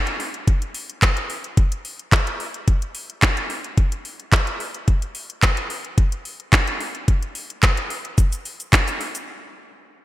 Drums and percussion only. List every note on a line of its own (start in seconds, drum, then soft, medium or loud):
0.07 closed hi-hat medium
0.20 open hi-hat medium
0.34 closed hi-hat medium
0.47 kick loud
0.47 closed hi-hat medium
0.62 closed hi-hat soft
0.74 open hi-hat medium
0.90 closed hi-hat medium
1.02 kick loud
1.02 clap loud
1.02 closed hi-hat medium
1.17 closed hi-hat medium
1.30 open hi-hat medium
1.44 closed hi-hat soft
1.57 kick loud
1.57 closed hi-hat medium
1.72 closed hi-hat medium
1.85 open hi-hat medium
1.99 closed hi-hat soft
2.12 kick loud
2.12 clap loud
2.12 closed hi-hat medium
2.27 closed hi-hat medium
2.40 open hi-hat medium
2.54 closed hi-hat medium
2.68 kick loud
2.68 closed hi-hat medium
2.82 closed hi-hat soft
2.95 open hi-hat medium
3.10 closed hi-hat medium
3.22 kick loud
3.22 clap loud
3.22 closed hi-hat medium
3.37 closed hi-hat medium
3.50 open hi-hat medium
3.64 closed hi-hat medium
3.78 kick loud
3.78 closed hi-hat medium
3.92 closed hi-hat medium
4.05 open hi-hat medium
4.20 closed hi-hat soft
4.32 kick loud
4.32 clap loud
4.32 closed hi-hat medium
4.47 closed hi-hat medium
4.60 open hi-hat medium
4.74 closed hi-hat medium
4.88 kick loud
4.88 closed hi-hat medium
5.02 closed hi-hat medium
5.15 open hi-hat medium
5.30 closed hi-hat medium
5.42 kick loud
5.42 clap loud
5.42 closed hi-hat medium
5.57 closed hi-hat medium
5.70 open hi-hat medium
5.85 closed hi-hat soft
5.98 kick loud
5.98 closed hi-hat medium
6.12 closed hi-hat medium
6.25 open hi-hat medium
6.40 closed hi-hat soft
6.53 kick loud
6.53 clap loud
6.53 closed hi-hat medium
6.67 closed hi-hat medium
6.80 open hi-hat medium
6.95 closed hi-hat medium
7.08 kick loud
7.08 closed hi-hat medium
7.23 closed hi-hat soft
7.35 open hi-hat medium
7.50 closed hi-hat medium
7.63 kick loud
7.63 clap loud
7.63 closed hi-hat medium
7.77 closed hi-hat medium
7.90 open hi-hat medium
8.05 closed hi-hat soft
8.18 kick loud
8.18 closed hi-hat medium
8.18 shaker medium
8.32 closed hi-hat medium
8.32 shaker medium
8.45 open hi-hat medium
8.45 shaker medium
8.60 closed hi-hat soft
8.60 shaker medium
8.73 kick loud
8.73 clap loud
8.73 closed hi-hat medium
8.73 shaker medium
8.88 closed hi-hat medium
8.88 shaker medium
9.01 open hi-hat medium
9.01 shaker soft
9.15 closed hi-hat medium
9.15 shaker medium